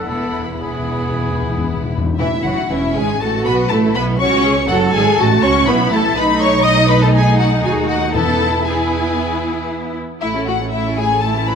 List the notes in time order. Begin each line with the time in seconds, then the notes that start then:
0.06 E1 E2 B3 E4 A4 B5
0.16 E2
0.23 E2
0.32 E2
0.39 E2
0.47 E2
0.55 E2
0.59 E2 B3 E4 G#4 B5
0.71 E2
0.79 E2
0.86 E2
0.94 E2
1.02 E2
1.10 E2
1.18 E2
1.26 E2
1.34 E2
1.43 E2
1.50 E2
1.58 E2
1.66 E2
1.74 E2
1.82 E2
1.89 E2
1.98 E2
2.05 E2
2.18 E1 A2 E3 E4 E5
2.44 F#1 F#3 F#4 F#5
2.69 E1 E3 C#4 E4 E5
2.95 G#1 G#3 G#4 G#5
3.20 A1 A3 F#4 A4 A5
3.45 B1 B3 B4 B5
3.69 A1 A3 E4 A4 A5
3.94 B1 B3 B4 B5
4.18 C#2 C#4 F#4 C#5 C#6
4.44 G#4
4.68 F#1 F#3 F#4 A4 F#5
4.93 G#1 G#3 G#4 G#5
5.18 A1 A3 F#4 A4 A5
5.42 C#2 C#4 C#5 C#6
5.66 B1 B3 E4 B4 B5
5.90 A1 A3 A4 A5
6.15 B1 A3 D#4 B4 B5
6.40 C#5 C#6
6.64 A3 D#4 D#5 D#6
6.88 B4 B5
7.00 A4 A5
7.14 G#4 G#5
7.38 F#4 F#5
7.63 D#2 F#4 G#4 G#5
7.88 F#4 F#5
8.12 E2 B3 E4 A4 A5
8.67 B3 E4 G#4 G#5
10.21 A1 A3 E4 E5
10.35 C#4 A4
10.46 A3 E4 F#4 F#5
10.60 C#4 A4
10.71 A3 E4 E5
10.86 C#4 A4
10.96 A3 E4 G#4 G#5
11.10 C#4 A4
11.21 A3 E4 A4 A5
11.36 C#4 A4
11.46 A3 E4 B4 B5